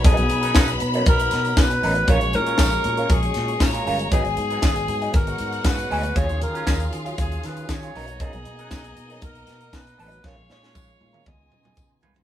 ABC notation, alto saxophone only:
X:1
M:4/4
L:1/8
Q:1/4=118
K:Cblyd
V:1 name="Alto saxophone"
A3 z ^A2 =B2 | d B3 A2 d2 | A4 B2 c2 | d B2 z A c d2 |
A4 ^A2 =B B | d d3 e3 z |]